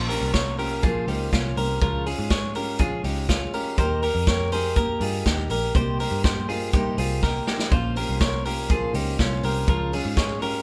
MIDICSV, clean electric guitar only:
0, 0, Header, 1, 2, 480
1, 0, Start_track
1, 0, Tempo, 491400
1, 1775, Time_signature, 4, 2, 24, 8
1, 10376, End_track
2, 0, Start_track
2, 0, Title_t, "Clean electric guitar"
2, 0, Program_c, 0, 27
2, 85, Note_on_c, 0, 70, 61
2, 94, Note_on_c, 0, 67, 49
2, 324, Note_off_c, 0, 70, 0
2, 328, Note_on_c, 0, 73, 75
2, 334, Note_off_c, 0, 67, 0
2, 338, Note_on_c, 0, 70, 57
2, 561, Note_off_c, 0, 70, 0
2, 569, Note_off_c, 0, 73, 0
2, 573, Note_on_c, 0, 70, 75
2, 579, Note_on_c, 0, 67, 60
2, 807, Note_off_c, 0, 67, 0
2, 811, Note_on_c, 0, 68, 81
2, 814, Note_off_c, 0, 70, 0
2, 820, Note_on_c, 0, 65, 59
2, 1049, Note_off_c, 0, 68, 0
2, 1053, Note_on_c, 0, 67, 69
2, 1057, Note_off_c, 0, 65, 0
2, 1061, Note_on_c, 0, 63, 54
2, 1294, Note_off_c, 0, 67, 0
2, 1298, Note_off_c, 0, 63, 0
2, 1299, Note_on_c, 0, 65, 74
2, 1305, Note_on_c, 0, 61, 55
2, 1537, Note_off_c, 0, 65, 0
2, 1539, Note_on_c, 0, 70, 75
2, 1540, Note_off_c, 0, 61, 0
2, 1547, Note_on_c, 0, 67, 59
2, 1766, Note_off_c, 0, 70, 0
2, 1778, Note_on_c, 0, 70, 76
2, 1781, Note_off_c, 0, 67, 0
2, 1786, Note_on_c, 0, 65, 66
2, 2014, Note_off_c, 0, 65, 0
2, 2017, Note_off_c, 0, 70, 0
2, 2019, Note_on_c, 0, 68, 70
2, 2025, Note_on_c, 0, 65, 52
2, 2252, Note_off_c, 0, 68, 0
2, 2256, Note_on_c, 0, 73, 71
2, 2261, Note_off_c, 0, 65, 0
2, 2263, Note_on_c, 0, 68, 53
2, 2494, Note_off_c, 0, 73, 0
2, 2498, Note_on_c, 0, 70, 75
2, 2500, Note_off_c, 0, 68, 0
2, 2504, Note_on_c, 0, 67, 61
2, 2730, Note_off_c, 0, 67, 0
2, 2734, Note_on_c, 0, 68, 84
2, 2737, Note_off_c, 0, 70, 0
2, 2741, Note_on_c, 0, 65, 60
2, 2971, Note_off_c, 0, 68, 0
2, 2975, Note_on_c, 0, 67, 70
2, 2978, Note_off_c, 0, 65, 0
2, 2984, Note_on_c, 0, 63, 53
2, 3214, Note_off_c, 0, 67, 0
2, 3217, Note_on_c, 0, 65, 71
2, 3220, Note_off_c, 0, 63, 0
2, 3225, Note_on_c, 0, 61, 56
2, 3457, Note_off_c, 0, 65, 0
2, 3458, Note_on_c, 0, 70, 75
2, 3461, Note_off_c, 0, 61, 0
2, 3466, Note_on_c, 0, 67, 59
2, 3692, Note_off_c, 0, 67, 0
2, 3692, Note_off_c, 0, 70, 0
2, 3696, Note_on_c, 0, 72, 85
2, 3704, Note_on_c, 0, 67, 67
2, 3933, Note_off_c, 0, 67, 0
2, 3933, Note_off_c, 0, 72, 0
2, 3937, Note_on_c, 0, 70, 66
2, 3945, Note_on_c, 0, 67, 50
2, 4177, Note_off_c, 0, 70, 0
2, 4181, Note_off_c, 0, 67, 0
2, 4184, Note_on_c, 0, 73, 68
2, 4188, Note_on_c, 0, 70, 59
2, 4416, Note_off_c, 0, 73, 0
2, 4420, Note_on_c, 0, 72, 77
2, 4423, Note_off_c, 0, 70, 0
2, 4427, Note_on_c, 0, 68, 60
2, 4656, Note_off_c, 0, 72, 0
2, 4659, Note_on_c, 0, 70, 85
2, 4662, Note_off_c, 0, 68, 0
2, 4667, Note_on_c, 0, 67, 63
2, 4899, Note_off_c, 0, 70, 0
2, 4902, Note_off_c, 0, 67, 0
2, 4905, Note_on_c, 0, 65, 54
2, 4906, Note_on_c, 0, 68, 61
2, 5140, Note_off_c, 0, 68, 0
2, 5142, Note_off_c, 0, 65, 0
2, 5144, Note_on_c, 0, 67, 76
2, 5151, Note_on_c, 0, 63, 56
2, 5378, Note_off_c, 0, 67, 0
2, 5383, Note_on_c, 0, 70, 78
2, 5385, Note_off_c, 0, 63, 0
2, 5390, Note_on_c, 0, 67, 61
2, 5620, Note_off_c, 0, 67, 0
2, 5621, Note_off_c, 0, 70, 0
2, 5625, Note_on_c, 0, 72, 82
2, 5631, Note_on_c, 0, 67, 63
2, 5859, Note_off_c, 0, 72, 0
2, 5860, Note_off_c, 0, 67, 0
2, 5863, Note_on_c, 0, 70, 68
2, 5871, Note_on_c, 0, 67, 51
2, 6095, Note_off_c, 0, 70, 0
2, 6097, Note_off_c, 0, 67, 0
2, 6099, Note_on_c, 0, 72, 67
2, 6108, Note_on_c, 0, 67, 59
2, 6333, Note_off_c, 0, 67, 0
2, 6337, Note_on_c, 0, 68, 75
2, 6339, Note_off_c, 0, 72, 0
2, 6347, Note_on_c, 0, 65, 57
2, 6573, Note_off_c, 0, 68, 0
2, 6577, Note_on_c, 0, 67, 72
2, 6580, Note_off_c, 0, 65, 0
2, 6583, Note_on_c, 0, 63, 63
2, 6817, Note_off_c, 0, 67, 0
2, 6821, Note_off_c, 0, 63, 0
2, 6822, Note_on_c, 0, 68, 69
2, 6833, Note_on_c, 0, 65, 55
2, 7060, Note_off_c, 0, 68, 0
2, 7064, Note_on_c, 0, 70, 66
2, 7066, Note_off_c, 0, 65, 0
2, 7070, Note_on_c, 0, 67, 57
2, 7290, Note_off_c, 0, 67, 0
2, 7301, Note_off_c, 0, 70, 0
2, 7302, Note_on_c, 0, 67, 75
2, 7310, Note_on_c, 0, 63, 59
2, 7540, Note_off_c, 0, 67, 0
2, 7540, Note_on_c, 0, 72, 77
2, 7544, Note_off_c, 0, 63, 0
2, 7549, Note_on_c, 0, 65, 57
2, 7779, Note_off_c, 0, 72, 0
2, 7784, Note_off_c, 0, 65, 0
2, 7785, Note_on_c, 0, 70, 69
2, 7791, Note_on_c, 0, 67, 51
2, 8014, Note_off_c, 0, 70, 0
2, 8018, Note_on_c, 0, 73, 75
2, 8023, Note_off_c, 0, 67, 0
2, 8026, Note_on_c, 0, 70, 56
2, 8248, Note_off_c, 0, 70, 0
2, 8256, Note_off_c, 0, 73, 0
2, 8260, Note_on_c, 0, 70, 77
2, 8271, Note_on_c, 0, 67, 61
2, 8499, Note_off_c, 0, 70, 0
2, 8503, Note_off_c, 0, 67, 0
2, 8507, Note_on_c, 0, 68, 80
2, 8514, Note_on_c, 0, 65, 59
2, 8740, Note_off_c, 0, 68, 0
2, 8743, Note_on_c, 0, 67, 72
2, 8746, Note_off_c, 0, 65, 0
2, 8750, Note_on_c, 0, 63, 52
2, 8980, Note_off_c, 0, 67, 0
2, 8984, Note_off_c, 0, 63, 0
2, 8984, Note_on_c, 0, 65, 74
2, 8995, Note_on_c, 0, 61, 57
2, 9221, Note_off_c, 0, 65, 0
2, 9226, Note_off_c, 0, 61, 0
2, 9227, Note_on_c, 0, 70, 74
2, 9233, Note_on_c, 0, 67, 60
2, 9456, Note_off_c, 0, 70, 0
2, 9465, Note_off_c, 0, 67, 0
2, 9468, Note_on_c, 0, 70, 78
2, 9478, Note_on_c, 0, 65, 62
2, 9701, Note_off_c, 0, 65, 0
2, 9702, Note_off_c, 0, 70, 0
2, 9708, Note_on_c, 0, 68, 67
2, 9712, Note_on_c, 0, 65, 50
2, 9937, Note_off_c, 0, 68, 0
2, 9938, Note_on_c, 0, 73, 74
2, 9944, Note_off_c, 0, 65, 0
2, 9948, Note_on_c, 0, 68, 57
2, 10177, Note_off_c, 0, 73, 0
2, 10181, Note_on_c, 0, 70, 82
2, 10182, Note_off_c, 0, 68, 0
2, 10189, Note_on_c, 0, 67, 62
2, 10376, Note_off_c, 0, 67, 0
2, 10376, Note_off_c, 0, 70, 0
2, 10376, End_track
0, 0, End_of_file